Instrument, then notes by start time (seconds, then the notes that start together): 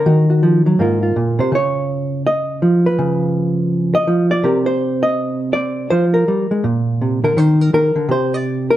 hollow-body jazz guitar
Already playing: A#4
0.06 D#3 F#4
0.30 F#4
0.43 F3
0.66 F#3
0.79 G#2 A#3 F4 A#4
1.03 F4
1.16 A#2
1.39 C3 C5
1.52 C#3 C#5
2.27 D#5
2.62 F3
2.86 B4
2.99 C#3
3.95 D#5
4.07 F3
4.31 D5
4.44 C3 G4 A#4
4.66 C5
5.03 D#5
5.53 C4 D5
5.90 F3 C5
6.14 A#4
6.28 G3
6.51 G#3
6.64 A#2
7.02 C3
7.24 D3 A#4
7.37 D#3 C5
7.61 A#4
7.73 D#3 A#4
7.96 D3
8.09 C3 C5
8.34 D5
8.71 A#4